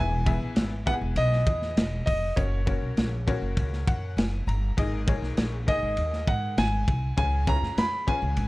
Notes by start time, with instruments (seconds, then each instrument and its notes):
Already playing: upright bass E1, upright piano E3 B3 E4 G#4 B4 E5, grand piano G#5
0.26 upright piano B3 E4 G#4 B4 E5, kick, ride
0.56 upright bass G#1, snare, ride
0.86 upright piano B3 E4 G4 B4 G#5, grand piano F#5, kick, ride
0.93 upright piano G#4
1.01 upright bass E1
1.16 upright bass B1, grand piano D#5, ride
1.33 snare
1.46 upright bass E2, kick, ride
1.62 snare
1.77 upright bass E1, snare, ride
2.06 upright bass F1, grand piano D#5, kick, open hi-hat, ride
2.36 upright bass F#1, upright piano A#3 C#4 F#4 A#4 C#5, grand piano C#5, kick, hi-hat pedal, ride
2.66 upright piano A#3 C#4 F#4 A#4 C#5, kick, ride
2.82 upright bass B1
2.97 upright bass A#1, snare, ride
3.27 upright piano A#3 C#4 F#4 A#4 C#5, kick, ride
3.42 upright bass F#1
3.57 upright bass C#2, kick, ride
3.73 snare
3.87 upright bass F#2, upright piano F#5, kick, ride
4.17 upright bass F#1, upright piano G#5, snare, ride
4.47 upright bass G1, upright piano A#5, ride
4.77 upright bass G#1, upright piano G#2 A#3 D#4 G#4 A#4 D#5, kick, ride
5.07 upright piano A#3 D#4 G#4 A#4 C#5, kick, ride
5.22 upright bass B1, snare
5.37 upright bass A#1, snare, ride
5.67 upright piano A#3 D#4 G#4 A#4 D#5, grand piano D#5, kick, ride
5.83 upright bass G#1
5.97 upright bass D#2, ride
6.13 snare
6.27 upright bass G#2, grand piano F#5, kick, ride
6.58 upright bass G#1, grand piano G#5, snare, ride
6.88 upright bass C2, kick, ride
7.17 upright bass C#2, upright piano C#3 C#4 F4 G#4 B4 C#5, grand piano G#5, kick, ride
7.47 upright piano C#4 E4 G#4 B4 C#5, grand piano A#5, kick, ride
7.54 upright piano F4
7.62 upright bass F#2, snare
7.77 upright bass F2, grand piano B5, snare, ride
8.07 upright piano C#4 F4 G#4 B4 C#5, grand piano G#5, kick, ride
8.22 upright bass C#2
8.37 upright bass G#1, ride